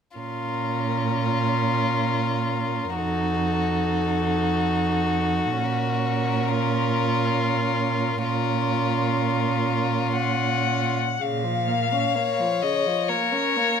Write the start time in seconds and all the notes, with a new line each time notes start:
0.17 A#2 C#4 F4 A#4
2.97 F2 D#4 F#4 A4
5.60 A#2 C#4 A#4
6.49 F4
8.25 A#2 C#4 F4 A#4
10.16 F#5
11.20 A#2 C#3 F5
11.43 F3
11.67 A#3
11.92 C#4
12.15 A#3 C#5
12.39 F3
12.61 C#3 D#5
12.86 F3
13.08 A#3 A#4 C#5
13.32 C#4
13.56 A#3